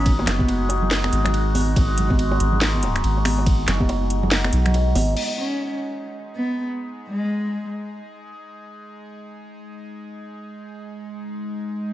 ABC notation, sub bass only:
X:1
M:4/4
L:1/8
Q:"Swing 16ths" 1/4=141
K:G#m
V:1 name="Sub bass" clef=bass
G,,, F,,,4 G,,,3 | G,,,3 G,,,3 G,,,2- | G,,, F,,,4 B,,,2 G,,, | z8 |
z8 | z8 | z8 |]